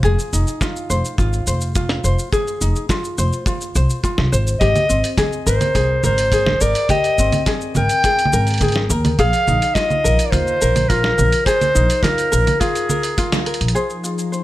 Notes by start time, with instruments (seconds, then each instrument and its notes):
Already playing: ukulele D#4 F4 C5
0.03 upright bass F1, ukulele G#4, kick, shaker
0.19 shaker
0.33 upright bass F1, ukulele D#4, shaker
0.47 shaker
0.61 ukulele F4, kick, snare, shaker
0.76 shaker
0.90 upright bass F1, ukulele C5, shaker
1.05 shaker
1.18 upright bass G#1, ukulele F4, kick, shaker
1.33 shaker
1.47 upright bass F1, ukulele C5, shaker
1.61 shaker
1.75 ukulele F4, kick, shaker
1.89 snare
2.04 upright bass F1, ukulele C5, shaker
2.19 shaker
2.32 ukulele G#4, kick, shaker
2.47 shaker
2.61 upright bass F1, ukulele D#4, shaker
2.75 shaker
2.89 ukulele F4, kick, snare, shaker
3.04 shaker
3.18 upright bass F1, ukulele C5, shaker
3.32 shaker
3.46 ukulele F4, kick, shaker
3.61 shaker
3.75 upright bass C2, ukulele C5, shaker
3.90 shaker
4.03 ukulele F4, kick, shaker
4.18 upright bass C2, snare
4.32 upright bass G#1, ukulele C5, shaker
4.47 shaker
4.60 upright bass G#1, ukulele G4, clarinet D#5, kick, open hi-hat, shaker
4.76 open hi-hat, low conga, shaker
4.89 upright bass G#1, ukulele C4, shaker
5.04 open hi-hat, shaker
5.18 ukulele G#4, kick, snare, open hi-hat, low conga, shaker
5.32 shaker
5.46 upright bass G#1, ukulele A#4, clarinet C5, shaker
5.61 open hi-hat, low conga, shaker
5.75 upright bass C2, ukulele G#4, kick, open hi-hat, shaker
6.03 upright bass G#1, ukulele A#4, clarinet C5, low conga, shaker
6.18 open hi-hat, shaker
6.32 ukulele G#4, kick, open hi-hat, shaker
6.47 snare, low conga
6.61 upright bass G#1, ukulele A#4, clarinet D5, shaker
6.75 open hi-hat, shaker
6.89 ukulele G4, clarinet D#5, kick, open hi-hat, low conga, shaker
7.04 open hi-hat, shaker
7.18 upright bass G#1, ukulele C4, shaker
7.32 open hi-hat, low conga, shaker
7.46 ukulele G#4, kick, snare, open hi-hat, shaker
7.61 shaker
7.75 upright bass G#1, ukulele A#4, clarinet G5, low conga, shaker
7.89 open hi-hat, shaker
8.04 ukulele G#4, kick, open hi-hat, shaker
8.19 open hi-hat, shaker
8.25 low conga
8.33 upright bass G#1, ukulele A#4, shaker
8.47 open hi-hat, shaker
8.50 open hi-hat
8.54 open hi-hat
8.58 kick, open hi-hat
8.61 ukulele G#4, open hi-hat, low conga, shaker
8.64 open hi-hat
8.68 open hi-hat
8.72 snare, open hi-hat
8.90 upright bass D#2, ukulele A#4, shaker
9.05 open hi-hat, low conga, shaker
9.19 upright bass A#1, ukulele G#4, clarinet F5, kick, open hi-hat, shaker
9.33 open hi-hat, shaker
9.48 upright bass A#1, ukulele D#4, low conga, shaker
9.62 open hi-hat, shaker
9.74 ukulele F4, clarinet D#5, kick, snare, open hi-hat, shaker
9.90 low conga, shaker
10.04 upright bass A#1, ukulele A#4, shaker
10.19 open hi-hat, shaker
10.25 clarinet D5
10.31 upright bass D#2, ukulele F4, clarinet C5, kick, open hi-hat, low conga, shaker
10.47 shaker
10.61 upright bass A#1, ukulele A#4, shaker
10.76 open hi-hat, low conga, shaker
10.89 ukulele F4, clarinet A#4, kick, open hi-hat, shaker
11.04 snare
11.18 upright bass A#1, ukulele A#4, low conga, shaker
11.32 open hi-hat, shaker
11.45 ukulele G#4, clarinet C5, kick, open hi-hat, shaker
11.61 open hi-hat, low conga, shaker
11.75 upright bass A#1, ukulele D#4, shaker
11.90 open hi-hat, shaker
12.03 ukulele F4, clarinet A#4, kick, snare, open hi-hat, low conga, shaker
12.18 open hi-hat, shaker
12.32 upright bass A#1, ukulele A#4, shaker
12.47 open hi-hat, low conga, shaker
12.60 ukulele F4, clarinet G#4, kick, open hi-hat, shaker
12.75 open hi-hat, shaker
12.89 ukulele A#4, low conga, shaker
13.03 open hi-hat, shaker
13.18 ukulele F4, kick, open hi-hat, shaker
13.32 snare, open hi-hat, low conga, shaker
13.46 ukulele A#4, closed hi-hat
13.54 closed hi-hat
13.61 upright bass A#1, closed hi-hat
13.68 closed hi-hat
13.74 analog synth pad F3 D#4 G#4, ukulele G#4 C5, synth texture A#5, shaker
13.90 shaker
14.04 ukulele F4, shaker
14.18 shaker
14.32 ukulele C5, shaker